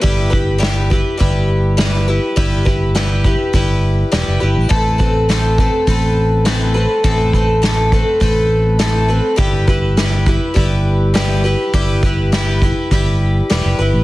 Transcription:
<<
  \new Staff \with { instrumentName = "Twelve-string acoustic guitar" } { \time 4/4 \key e \phrygian \tempo 4 = 102 <g e' g' b'>8 <e' g' b'>8 <g e' g' b'>8 <e' g' b'>8 <g e' g' b'>4 <g e' g' b'>8 <e' g' b'>8 | <g e' g' b'>8 <e' g' b'>8 <g e' g' b'>8 <e' g' b'>8 <g e' g' b'>4 <g e' g' b'>8 <e' g' b'>8 | <a, e a c' a' b'>8 <a c' a' b'>8 <a, e a c' a' b'>8 <a c' a' b'>8 <a c' a' b'>4 <a, e a c' a' b'>8 <a c' a' b'>8 | <a, e a c' a' b'>8 <a c' a' b'>8 <a, e a c' a' b'>8 <a c' a' b'>8 <a c' a' b'>4 <a, e a c' a' b'>8 <a c' a' b'>8 |
<g e' g' b'>8 <e' g' b'>8 <g e' g' b'>8 <e' g' b'>8 <g e' g' b'>4 <g e' g' b'>8 <e' g' b'>8 | <g e' g' b'>8 <e' g' b'>8 <g e' g' b'>8 <e' g' b'>8 <g e' g' b'>4 <g e' g' b'>8 <e' g' b'>8 | }
  \new Staff \with { instrumentName = "Fingered electric bass" } { \clef bass \time 4/4 \key e \phrygian g,,2 g,,2 | g,,2 g,,4 e,,16 fis,,16 g,,16 a,,16 | a,,2 a,,2 | a,,2 a,,2 |
g,,2 g,,2 | g,,2 g,,4 e,,16 fis,,16 g,,16 a,,16 | }
  \new DrumStaff \with { instrumentName = "Drums" } \drummode { \time 4/4 <hho bd>8 bd8 <hho sn>8 bd8 <hho bd>4 <hho sn>4 | <hho bd>8 bd8 <hho sn>8 bd8 <hho bd>4 <hho sn>4 | <hho bd>8 bd8 <hho sn>8 bd8 <hho bd>4 <hho sn>4 | <hho bd>8 bd8 <hho sn>8 bd8 <hho bd>4 <hho sn>4 |
<hho bd>8 bd8 <hho sn>8 bd8 <hho bd>4 <hho sn>4 | <hho bd>8 bd8 <hho sn>8 bd8 <hho bd>4 <hho sn>4 | }
>>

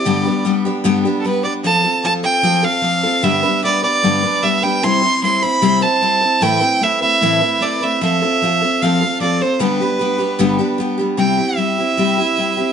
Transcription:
<<
  \new Staff \with { instrumentName = "Fiddle" } { \time 4/4 \key c \major \tempo 4 = 151 d''4 r4. r16. a'32 b'8 d''8 | a''4 a''8 g''4 f''4. | e''4 d''8 d''4. e''8 g''8 | c'''4 c'''8 b''4 a''4. |
g''4 e''8 e''4. d''8 e''8 | e''2 f''4 d''8 c''8 | b'2. r4 | g''4 e''2. | }
  \new Staff \with { instrumentName = "Steel-string acoustic guitar" } { \time 4/4 \key c \major <g, d g b d' g'>8 <g b d' g'>8 <g b d' g'>8 <g b d' g'>8 <g, d g b d' g'>8 <g b d' g'>8 <g b d' g'>8 <g b d' g'>8 | <f c' f' a'>8 <c' f' a'>8 <f c' f' a'>8 <c' f' a'>8 <f c' f' a'>8 <c' f' a'>8 <f c' f' a'>8 <c' f' a'>8 | <g, d g b d' b'>8 <g b d' b'>8 <g b d' b'>8 <g b d' b'>8 <g, d g b d' b'>8 <g b d' b'>8 <g b d' b'>8 <g b d' b'>8 | <c g c' e' c''>8 <c' e' c''>8 <g c' e' c''>8 <c' e' c''>8 <c g c' e' c''>8 <c' e' c''>8 <g c' e' c''>8 <c' e' c''>8 |
<a, e a c' e' b'>8 <a c' e' b'>8 <a c' e' b'>8 <a c' e' b'>8 <a, e a c' e' b'>8 <a c' e' b'>8 <a c' e' b'>8 <a c' e' b'>8 | <f c' f' a'>8 <c' f' a'>8 <f c' f' a'>8 <c' f' a'>8 <f c' f' a'>8 <c' f' a'>8 <f c' f' a'>8 <c' f' a'>8 | <g, d g b d' g'>8 <g b d' g'>8 <g b d' g'>8 <g b d' g'>8 <g, d g b d' g'>8 <g b d' g'>8 <g b d' g'>8 <g b d' g'>8 | <c g c' e' g'>8 <c' e' g'>8 <g c' e' g'>8 <c' e' g'>8 <c g c' e' g'>8 <c' e' g'>8 <g c' e' g'>8 <c' e' g'>8 | }
>>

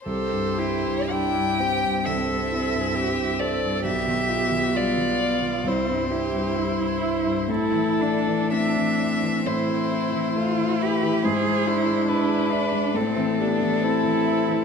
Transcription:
<<
  \new Staff \with { instrumentName = "Violin" } { \time 4/4 \key c \major \tempo 4 = 67 c''4 g''4 e''4. d''8 | e''4 d''4 c''2 | a'4 e''4 c''4. b'8 | c''4 b'4 a'2 | }
  \new Staff \with { instrumentName = "Cello" } { \time 4/4 \key c \major a'8 g'8 e'8 g'8 a'4 g'8 a'8 | g'4 f'4 e'8 g'8 e'4 | e'8 d'8 c'4 e'4 f'8 g'8 | gis'8 e'8 e'8 d'8 c'8 d'8 e'4 | }
  \new Staff \with { instrumentName = "Viola" } { \time 4/4 \key c \major g'8 e'8 d'8 c'2~ c'8 | b8 b4. c'8 e'4. | e'8 d'4. c'4 e'4 | e'8 d'4. c'8 b8 c'4 | }
  \new Staff \with { instrumentName = "Grand piano" } { \clef bass \time 4/4 \key c \major c,16 g,16 e'16 g,16 g16 g,16 c''16 g,16 c,16 g16 e'16 g,16 g16 g,16 c''16 g,16 | b,,16 b,16 f'16 b,16 g16 b,16 d''16 b,16 c,16 g,16 e'16 g,16 g16 g,16 e''16 g,16 | a,16 e16 e'16 e16 a16 e16 e''16 e16 a,16 a16 e'16 e16 a16 e16 e''16 e16 | gis,16 gis16 e'16 gis16 d'16 gis16 e''16 gis16 a,16 e16 g'16 e16 c'16 e16 e''16 e16 | }
>>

